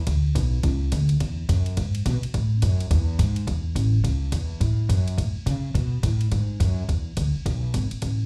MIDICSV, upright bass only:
0, 0, Header, 1, 3, 480
1, 0, Start_track
1, 0, Key_signature, 3, "major"
1, 0, Tempo, 283822
1, 123, Time_signature, 4, 2, 24, 8
1, 13966, End_track
2, 0, Start_track
2, 0, Title_t, "Upright bass"
2, 0, Program_c, 0, 32
2, 122, Note_on_c, 0, 38, 84
2, 587, Note_off_c, 0, 38, 0
2, 600, Note_on_c, 0, 35, 101
2, 1066, Note_off_c, 0, 35, 0
2, 1074, Note_on_c, 0, 37, 96
2, 1542, Note_off_c, 0, 37, 0
2, 1563, Note_on_c, 0, 38, 100
2, 2026, Note_off_c, 0, 38, 0
2, 2041, Note_on_c, 0, 40, 86
2, 2504, Note_off_c, 0, 40, 0
2, 2519, Note_on_c, 0, 42, 92
2, 2983, Note_off_c, 0, 42, 0
2, 3002, Note_on_c, 0, 44, 93
2, 3464, Note_off_c, 0, 44, 0
2, 3487, Note_on_c, 0, 47, 101
2, 3751, Note_off_c, 0, 47, 0
2, 3964, Note_on_c, 0, 45, 85
2, 4425, Note_off_c, 0, 45, 0
2, 4443, Note_on_c, 0, 42, 94
2, 4904, Note_off_c, 0, 42, 0
2, 4915, Note_on_c, 0, 40, 93
2, 5380, Note_off_c, 0, 40, 0
2, 5394, Note_on_c, 0, 44, 103
2, 5859, Note_off_c, 0, 44, 0
2, 5869, Note_on_c, 0, 40, 88
2, 6336, Note_off_c, 0, 40, 0
2, 6351, Note_on_c, 0, 33, 95
2, 6818, Note_off_c, 0, 33, 0
2, 6830, Note_on_c, 0, 37, 82
2, 7297, Note_off_c, 0, 37, 0
2, 7315, Note_on_c, 0, 40, 95
2, 7780, Note_off_c, 0, 40, 0
2, 7788, Note_on_c, 0, 45, 88
2, 8257, Note_off_c, 0, 45, 0
2, 8280, Note_on_c, 0, 42, 92
2, 8743, Note_off_c, 0, 42, 0
2, 8756, Note_on_c, 0, 45, 86
2, 9026, Note_off_c, 0, 45, 0
2, 9241, Note_on_c, 0, 49, 97
2, 9705, Note_off_c, 0, 49, 0
2, 9717, Note_on_c, 0, 47, 90
2, 10184, Note_off_c, 0, 47, 0
2, 10201, Note_on_c, 0, 45, 93
2, 10666, Note_off_c, 0, 45, 0
2, 10688, Note_on_c, 0, 44, 88
2, 11150, Note_off_c, 0, 44, 0
2, 11159, Note_on_c, 0, 42, 100
2, 11626, Note_off_c, 0, 42, 0
2, 11644, Note_on_c, 0, 40, 81
2, 12109, Note_off_c, 0, 40, 0
2, 12125, Note_on_c, 0, 38, 88
2, 12394, Note_off_c, 0, 38, 0
2, 12609, Note_on_c, 0, 35, 93
2, 13072, Note_off_c, 0, 35, 0
2, 13096, Note_on_c, 0, 32, 91
2, 13361, Note_off_c, 0, 32, 0
2, 13569, Note_on_c, 0, 33, 81
2, 13966, Note_off_c, 0, 33, 0
2, 13966, End_track
3, 0, Start_track
3, 0, Title_t, "Muted upright bass strokes"
3, 3770, Note_on_c, 9, 29, 43
3, 3939, Note_off_c, 9, 29, 0
3, 9051, Note_on_c, 9, 29, 40
3, 9220, Note_off_c, 9, 29, 0
3, 12438, Note_on_c, 9, 29, 40
3, 12608, Note_off_c, 9, 29, 0
3, 13386, Note_on_c, 9, 29, 41
3, 13555, Note_off_c, 9, 29, 0
3, 13966, End_track
0, 0, End_of_file